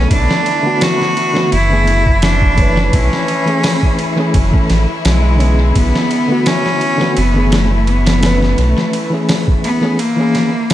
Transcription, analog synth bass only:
0, 0, Header, 1, 2, 480
1, 0, Start_track
1, 0, Tempo, 705882
1, 73, Time_signature, 4, 2, 24, 8
1, 7303, End_track
2, 0, Start_track
2, 0, Title_t, "Analog synth bass"
2, 0, Program_c, 0, 38
2, 77, Note_on_c, 0, 35, 103
2, 190, Note_off_c, 0, 35, 0
2, 1039, Note_on_c, 0, 30, 94
2, 1975, Note_off_c, 0, 30, 0
2, 1996, Note_on_c, 0, 35, 96
2, 2110, Note_off_c, 0, 35, 0
2, 2956, Note_on_c, 0, 30, 88
2, 3070, Note_off_c, 0, 30, 0
2, 3198, Note_on_c, 0, 33, 80
2, 3311, Note_off_c, 0, 33, 0
2, 3437, Note_on_c, 0, 35, 100
2, 3894, Note_off_c, 0, 35, 0
2, 3918, Note_on_c, 0, 35, 95
2, 4031, Note_off_c, 0, 35, 0
2, 4881, Note_on_c, 0, 30, 98
2, 5816, Note_off_c, 0, 30, 0
2, 5837, Note_on_c, 0, 35, 96
2, 5950, Note_off_c, 0, 35, 0
2, 7303, End_track
0, 0, End_of_file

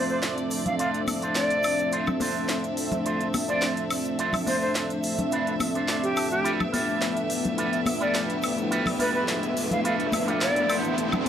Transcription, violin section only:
0, 0, Header, 1, 2, 480
1, 0, Start_track
1, 0, Tempo, 566038
1, 1632, Time_signature, 4, 2, 24, 8
1, 9571, End_track
2, 0, Start_track
2, 0, Title_t, "Violin section"
2, 0, Program_c, 0, 48
2, 0, Note_on_c, 0, 60, 71
2, 0, Note_on_c, 0, 69, 67
2, 0, Note_on_c, 0, 74, 82
2, 1600, Note_off_c, 0, 74, 0
2, 1636, Note_on_c, 0, 76, 89
2, 5440, Note_off_c, 0, 60, 0
2, 5472, Note_on_c, 0, 67, 73
2, 5473, Note_on_c, 0, 59, 73
2, 7361, Note_off_c, 0, 69, 0
2, 7392, Note_on_c, 0, 71, 69
2, 9038, Note_off_c, 0, 59, 0
2, 9055, Note_off_c, 0, 71, 0
2, 9066, Note_on_c, 0, 69, 79
2, 9571, Note_off_c, 0, 67, 0
2, 9571, Note_off_c, 0, 69, 0
2, 9571, Note_off_c, 0, 76, 0
2, 9571, End_track
0, 0, End_of_file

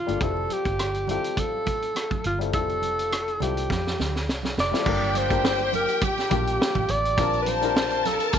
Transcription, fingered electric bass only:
0, 0, Header, 1, 2, 480
1, 0, Start_track
1, 0, Tempo, 581395
1, 168, Time_signature, 4, 2, 24, 8
1, 6924, End_track
2, 0, Start_track
2, 0, Title_t, "Fingered electric bass"
2, 0, Program_c, 0, 33
2, 69, Note_on_c, 0, 31, 76
2, 160, Note_off_c, 0, 31, 0
2, 176, Note_on_c, 0, 29, 96
2, 381, Note_off_c, 0, 29, 0
2, 543, Note_on_c, 0, 31, 78
2, 957, Note_off_c, 0, 31, 0
2, 1861, Note_on_c, 0, 31, 84
2, 2097, Note_off_c, 0, 31, 0
2, 2097, Note_on_c, 0, 29, 87
2, 2781, Note_off_c, 0, 29, 0
2, 2820, Note_on_c, 0, 36, 74
2, 3024, Note_off_c, 0, 36, 0
2, 3059, Note_on_c, 0, 41, 86
2, 3264, Note_off_c, 0, 41, 0
2, 3298, Note_on_c, 0, 38, 84
2, 3541, Note_off_c, 0, 38, 0
2, 3541, Note_on_c, 0, 36, 82
2, 3745, Note_off_c, 0, 36, 0
2, 3777, Note_on_c, 0, 29, 81
2, 3887, Note_off_c, 0, 29, 0
2, 4017, Note_on_c, 0, 31, 100
2, 4829, Note_off_c, 0, 31, 0
2, 5216, Note_on_c, 0, 34, 84
2, 5420, Note_off_c, 0, 34, 0
2, 5580, Note_on_c, 0, 33, 80
2, 5675, Note_off_c, 0, 33, 0
2, 5691, Note_on_c, 0, 33, 97
2, 5931, Note_off_c, 0, 33, 0
2, 5931, Note_on_c, 0, 34, 102
2, 6744, Note_off_c, 0, 34, 0
2, 6924, End_track
0, 0, End_of_file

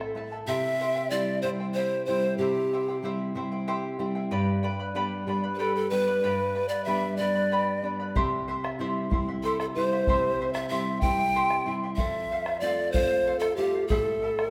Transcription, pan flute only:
0, 0, Header, 1, 2, 480
1, 0, Start_track
1, 0, Tempo, 638978
1, 360, Time_signature, 6, 3, 24, 8
1, 10892, End_track
2, 0, Start_track
2, 0, Title_t, "Pan flute"
2, 0, Program_c, 0, 75
2, 0, Note_on_c, 0, 69, 92
2, 89, Note_off_c, 0, 69, 0
2, 354, Note_on_c, 0, 76, 114
2, 830, Note_on_c, 0, 74, 96
2, 842, Note_off_c, 0, 76, 0
2, 1062, Note_off_c, 0, 74, 0
2, 1066, Note_on_c, 0, 72, 94
2, 1122, Note_off_c, 0, 72, 0
2, 1307, Note_on_c, 0, 72, 86
2, 1537, Note_off_c, 0, 72, 0
2, 1543, Note_on_c, 0, 72, 87
2, 1775, Note_off_c, 0, 72, 0
2, 1787, Note_on_c, 0, 67, 84
2, 2305, Note_off_c, 0, 67, 0
2, 4170, Note_on_c, 0, 71, 61
2, 4200, Note_on_c, 0, 69, 73
2, 4212, Note_off_c, 0, 71, 0
2, 4317, Note_off_c, 0, 69, 0
2, 4322, Note_on_c, 0, 69, 78
2, 4426, Note_off_c, 0, 69, 0
2, 4431, Note_on_c, 0, 71, 107
2, 5007, Note_off_c, 0, 71, 0
2, 5023, Note_on_c, 0, 74, 90
2, 5137, Note_off_c, 0, 74, 0
2, 5141, Note_on_c, 0, 76, 95
2, 5375, Note_off_c, 0, 76, 0
2, 5384, Note_on_c, 0, 74, 98
2, 5904, Note_off_c, 0, 74, 0
2, 7087, Note_on_c, 0, 69, 80
2, 7197, Note_off_c, 0, 69, 0
2, 7214, Note_on_c, 0, 69, 75
2, 7259, Note_off_c, 0, 69, 0
2, 7323, Note_on_c, 0, 72, 100
2, 7893, Note_off_c, 0, 72, 0
2, 7915, Note_on_c, 0, 76, 84
2, 8023, Note_off_c, 0, 76, 0
2, 8028, Note_on_c, 0, 76, 97
2, 8269, Note_on_c, 0, 79, 119
2, 8281, Note_off_c, 0, 76, 0
2, 8816, Note_off_c, 0, 79, 0
2, 8984, Note_on_c, 0, 76, 100
2, 9466, Note_on_c, 0, 74, 94
2, 9478, Note_off_c, 0, 76, 0
2, 9705, Note_on_c, 0, 72, 108
2, 9716, Note_off_c, 0, 74, 0
2, 10058, Note_off_c, 0, 72, 0
2, 10062, Note_on_c, 0, 69, 82
2, 10188, Note_on_c, 0, 67, 87
2, 10199, Note_off_c, 0, 69, 0
2, 10419, Note_off_c, 0, 67, 0
2, 10423, Note_on_c, 0, 68, 84
2, 10506, Note_off_c, 0, 68, 0
2, 10506, Note_on_c, 0, 69, 84
2, 10892, Note_off_c, 0, 69, 0
2, 10892, End_track
0, 0, End_of_file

